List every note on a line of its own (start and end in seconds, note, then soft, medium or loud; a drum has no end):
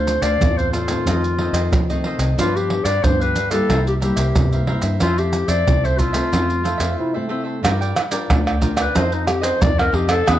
0.00 0.17 D2 medium
0.00 0.38 D3 medium
0.00 0.18 A3 medium
0.00 0.18 C4 medium
0.00 0.18 F4 medium
0.00 0.24 C5 medium
0.07 muted cavaquinho stroke soft
0.07 pandeiro medium
0.07 maracas medium
0.22 0.37 D2 medium
0.22 0.56 A4 medium
0.22 0.56 C5 medium
0.22 0.59 D5 medium
0.22 0.55 F5 medium
0.22 pandeiro medium
0.22 maracas medium
0.40 0.97 E2 medium
0.40 1.03 A2 soft
0.40 0.71 A3 soft
0.40 0.72 C4 medium
0.40 0.72 F4 medium
0.40 pandeiro medium
0.40 maracas medium
0.40 surdo medium
0.58 0.73 A4 soft
0.58 0.72 C5 medium
0.58 0.73 C5 soft
0.58 0.73 F5 soft
0.58 pandeiro soft
0.58 maracas soft
0.72 0.89 D4 soft
0.72 2.00 F4 medium
0.72 0.88 A4 soft
0.72 0.88 C5 soft
0.72 0.87 F5 soft
0.72 pandeiro soft
0.72 maracas medium
0.88 1.33 D#3 medium
0.88 1.33 A3 medium
0.88 1.34 C4 medium
0.88 1.05 A4 medium
0.88 1.05 C5 medium
0.88 1.04 F5 medium
0.88 pandeiro medium
0.88 maracas medium
1.06 1.48 F2 medium
1.06 1.69 F2 soft
1.06 1.21 F4 medium
1.06 1.22 A4 medium
1.06 1.22 C5 medium
1.06 1.22 D#5 medium
1.06 pandeiro medium
1.06 maracas medium
1.06 surdo soft
1.24 muted cavaquinho stroke soft
1.24 pandeiro soft
1.24 maracas soft
1.38 1.70 D#3 medium
1.38 1.70 A3 medium
1.38 1.70 C4 medium
1.38 1.55 F4 soft
1.38 1.54 A4 soft
1.38 1.54 C5 soft
1.38 1.52 D#5 soft
1.38 pandeiro soft
1.53 1.68 F2 medium
1.53 1.87 A4 medium
1.53 1.87 C5 medium
1.53 1.86 D#5 medium
1.53 pandeiro medium
1.53 maracas medium
1.72 2.35 C3 soft
1.72 2.14 F3 medium
1.72 pandeiro medium
1.72 maracas medium
1.72 surdo medium
1.90 2.33 D#3 medium
1.90 2.34 A3 medium
1.90 2.34 C4 medium
1.90 2.04 A4 soft
1.90 2.04 C5 soft
1.90 2.04 D#5 soft
1.90 pandeiro soft
1.90 maracas soft
2.04 2.20 F4 medium
2.04 2.20 A4 medium
2.04 2.19 C5 medium
2.04 2.18 D#5 medium
2.04 pandeiro medium
2.19 2.34 C2 medium
2.19 2.36 A4 soft
2.19 2.36 C5 soft
2.19 2.36 D#5 soft
2.19 pandeiro medium
2.19 maracas medium
2.37 2.80 G2 medium
2.37 3.01 G2 soft
2.37 2.80 F3 medium
2.37 2.81 B3 medium
2.37 2.53 D4 medium
2.37 2.81 D4 medium
2.37 2.58 F4 medium
2.37 2.53 G4 medium
2.37 2.54 B4 medium
2.37 2.54 F5 medium
2.37 pandeiro medium
2.37 maracas medium
2.37 surdo medium
2.56 2.86 G4 medium
2.56 2.69 G4 soft
2.56 2.69 B4 soft
2.56 2.69 F5 soft
2.56 pandeiro soft
2.56 maracas soft
2.70 muted cavaquinho stroke soft
2.70 pandeiro medium
2.85 3.00 G2 medium
2.85 3.18 G4 medium
2.85 3.18 B4 medium
2.85 3.05 D5 medium
2.85 3.18 F5 medium
2.85 pandeiro medium
2.85 maracas medium
3.04 3.60 G2 medium
3.04 3.67 D3 soft
3.04 3.35 F3 medium
3.04 3.35 B3 medium
3.04 3.36 D4 medium
3.04 3.23 C5 medium
3.04 pandeiro medium
3.04 maracas medium
3.04 surdo loud
3.20 3.34 G4 soft
3.20 3.35 B4 soft
3.20 3.50 B4 medium
3.20 3.35 F5 soft
3.20 pandeiro soft
3.20 maracas soft
3.35 3.51 D4 soft
3.35 3.51 G4 soft
3.35 3.50 B4 soft
3.35 3.49 F5 soft
3.35 pandeiro medium
3.35 maracas medium
3.50 3.96 G3 medium
3.50 3.97 A#3 medium
3.50 3.97 E4 medium
3.50 3.68 G4 medium
3.50 3.82 A4 medium
3.50 3.67 B4 medium
3.50 3.67 F5 medium
3.50 pandeiro medium
3.50 maracas medium
3.69 4.11 C2 medium
3.69 4.32 C3 soft
3.69 3.84 E4 medium
3.69 3.85 A#4 medium
3.69 3.85 C5 medium
3.69 3.85 E5 medium
3.69 pandeiro medium
3.69 maracas medium
3.69 surdo soft
3.87 3.95 G4 medium
3.87 muted cavaquinho stroke soft
3.87 pandeiro soft
3.87 maracas soft
4.00 4.33 G3 medium
4.00 4.33 A#3 medium
4.00 4.16 E4 soft
4.00 4.34 E4 medium
4.00 4.64 G4 medium
4.00 4.16 A#4 soft
4.00 4.15 C5 soft
4.00 4.15 E5 soft
4.00 pandeiro soft
4.00 maracas medium
4.16 4.32 C2 medium
4.16 4.50 A#4 soft
4.16 4.49 C5 medium
4.16 4.49 E5 medium
4.16 pandeiro medium
4.16 maracas medium
4.36 4.98 G2 soft
4.36 4.77 C3 medium
4.36 pandeiro medium
4.36 maracas medium
4.36 surdo medium
4.52 4.64 G3 medium
4.52 4.64 A#3 medium
4.52 4.64 E4 medium
4.52 4.67 A#4 soft
4.52 4.67 C5 soft
4.52 4.67 E5 soft
4.52 pandeiro soft
4.52 maracas soft
4.67 4.96 G3 soft
4.67 4.96 A#3 soft
4.67 4.83 E4 medium
4.67 4.96 E4 medium
4.67 4.83 A#4 medium
4.67 4.83 C5 medium
4.67 4.82 E5 medium
4.67 pandeiro medium
4.82 4.97 G2 medium
4.82 5.00 A#4 soft
4.82 4.99 C5 soft
4.82 4.99 E5 soft
4.82 pandeiro medium
4.82 maracas medium
5.00 5.43 F2 medium
5.00 5.64 F3 medium
5.00 5.62 A3 medium
5.00 5.62 C4 soft
5.00 5.62 E4 medium
5.00 5.16 F4 medium
5.00 5.20 F4 medium
5.00 5.16 A4 medium
5.00 5.17 C5 medium
5.00 5.17 E5 medium
5.00 pandeiro medium
5.00 maracas medium
5.00 surdo medium
5.18 5.50 G4 medium
5.18 5.32 A4 soft
5.18 5.32 C5 soft
5.18 5.32 E5 soft
5.18 pandeiro soft
5.18 maracas soft
5.32 muted cavaquinho stroke soft
5.32 pandeiro medium
5.32 maracas medium
5.48 5.63 F2 medium
5.48 5.82 A4 medium
5.48 5.81 C5 medium
5.48 5.87 D5 loud
5.48 5.81 E5 medium
5.48 pandeiro medium
5.48 maracas medium
5.67 6.23 C2 medium
5.67 6.30 C3 medium
5.67 6.12 A3 medium
5.67 6.12 C4 soft
5.67 6.12 E4 medium
5.67 pandeiro medium
5.67 maracas medium
5.67 surdo loud
5.84 5.97 A4 soft
5.84 5.98 C5 soft
5.84 6.00 C5 medium
5.84 5.99 E5 soft
5.84 pandeiro soft
5.84 maracas soft
5.98 6.14 F4 soft
5.98 7.31 F4 medium
5.98 6.14 A4 soft
5.98 6.13 C5 soft
5.98 6.12 E5 soft
5.98 pandeiro soft
5.98 maracas medium
5.98 surdo medium
6.13 6.59 A3 medium
6.13 6.60 C4 medium
6.13 6.31 A4 soft
6.13 6.30 C5 medium
6.13 6.30 E5 medium
6.13 pandeiro medium
6.13 maracas medium
6.32 6.75 F2 medium
6.32 6.96 F3 soft
6.32 6.47 F4 medium
6.32 6.48 A4 medium
6.32 6.48 C5 medium
6.32 6.48 E5 medium
6.32 pandeiro medium
6.32 maracas medium
6.32 surdo medium
6.50 muted cavaquinho stroke soft
6.50 pandeiro soft
6.50 maracas soft
6.63 7.10 A3 soft
6.63 7.10 C4 soft
6.63 6.80 F4 soft
6.63 6.95 F4 medium
6.63 6.78 A4 soft
6.63 6.78 C5 soft
6.63 6.76 E5 soft
6.63 pandeiro soft
6.63 maracas medium
6.78 6.95 F2 medium
6.78 7.12 A4 soft
6.78 7.12 C5 soft
6.78 7.11 E5 medium
6.78 pandeiro medium
6.78 maracas medium
6.99 7.61 C3 medium
6.99 7.17 E4 medium
7.14 7.65 A3 medium
7.14 7.27 A3 medium
7.14 7.27 C4 medium
7.14 7.27 E4 medium
7.14 7.28 A4 soft
7.14 7.29 C5 soft
7.14 7.29 E5 soft
7.29 7.58 A3 medium
7.29 7.59 C4 soft
7.29 7.59 E4 medium
7.29 7.45 F4 medium
7.29 7.45 A4 medium
7.29 7.44 C5 medium
7.29 7.42 E5 medium
7.44 7.62 A4 soft
7.44 7.61 C5 soft
7.44 7.61 E5 soft
7.63 7.92 G2 medium
7.63 8.26 G3 medium
7.63 7.95 D4 medium
7.63 7.79 F4 medium
7.63 7.95 F4 medium
7.63 7.79 A#4 medium
7.63 7.95 A#4 medium
7.63 7.79 D5 medium
7.63 7.80 G5 medium
7.63 pandeiro medium
7.63 tamborim medium
7.63 maracas medium
7.63 surdo medium
7.81 7.95 A#4 soft
7.81 7.95 D5 soft
7.81 7.96 G5 medium
7.81 pandeiro soft
7.81 maracas soft
7.96 muted cavaquinho stroke soft
7.96 pandeiro medium
7.96 tamborim medium
7.96 maracas medium
8.11 8.56 D4 medium
8.11 8.57 F4 medium
8.11 8.57 A#4 medium
8.11 8.45 A#4 medium
8.11 8.44 D5 medium
8.11 8.44 G5 medium
8.11 pandeiro medium
8.11 maracas medium
8.29 8.86 D2 medium
8.29 8.92 D3 medium
8.29 pandeiro medium
8.29 tamborim medium
8.29 maracas medium
8.29 surdo loud
8.46 8.61 A#4 soft
8.46 8.61 D5 soft
8.46 8.61 G5 soft
8.46 pandeiro soft
8.46 tamborim medium
8.46 maracas soft
8.61 8.81 D4 medium
8.61 8.77 F4 soft
8.61 8.81 F4 medium
8.61 8.77 A#4 soft
8.61 8.82 A#4 medium
8.61 8.76 D5 soft
8.61 8.75 G5 soft
8.61 pandeiro medium
8.61 maracas medium
8.61 surdo medium
8.76 8.94 A#4 medium
8.76 8.98 B4 medium
8.76 8.93 D5 medium
8.76 8.93 G5 medium
8.76 pandeiro medium
8.76 tamborim medium
8.76 maracas medium
8.95 9.51 F2 medium
8.95 9.58 F3 soft
8.95 9.23 C4 soft
8.95 9.23 D#4 medium
8.95 9.25 F4 medium
8.95 9.26 A4 medium
8.95 9.23 A4 soft
8.95 9.26 C5 medium
8.95 9.16 C5 medium
8.95 9.26 D#5 medium
8.95 pandeiro medium
8.95 maracas medium
8.95 surdo medium
9.12 9.29 D#4 medium
9.12 pandeiro soft
9.12 maracas soft
9.27 9.72 C4 medium
9.27 9.72 D#4 soft
9.27 9.45 G4 medium
9.27 9.72 A4 medium
9.27 muted cavaquinho stroke soft
9.27 pandeiro soft
9.27 tamborim medium
9.27 maracas medium
9.42 9.75 A4 medium
9.42 9.75 C5 medium
9.42 9.63 C5 medium
9.42 9.75 D#5 medium
9.42 pandeiro medium
9.42 maracas medium
9.61 9.89 F2 medium
9.61 10.24 C3 medium
9.61 9.81 D5 medium
9.61 pandeiro medium
9.61 maracas medium
9.61 surdo loud
9.78 10.22 C4 soft
9.78 10.23 D#4 medium
9.78 10.23 A4 medium
9.78 9.91 A4 soft
9.78 9.96 A#4 medium
9.78 9.93 C5 soft
9.78 9.93 D#5 soft
9.78 pandeiro soft
9.78 tamborim medium
9.78 maracas soft
9.92 10.21 F2 medium
9.92 10.08 F4 medium
9.92 10.12 G4 medium
9.92 10.08 A4 medium
9.92 10.07 C5 medium
9.92 10.06 D#5 medium
9.92 pandeiro medium
10.07 10.25 A4 soft
10.07 10.31 A4 medium
10.07 10.24 C5 soft
10.07 10.24 D#5 soft
10.07 pandeiro medium
10.07 tamborim medium
10.07 maracas medium
10.26 10.39 E2 medium
10.26 10.39 E3 medium
10.26 10.39 B3 medium
10.26 10.39 D4 medium
10.26 10.39 G#4 medium
10.26 10.39 B4 medium
10.26 10.39 E5 medium
10.26 pandeiro medium
10.26 tamborim medium
10.26 maracas medium
10.26 surdo medium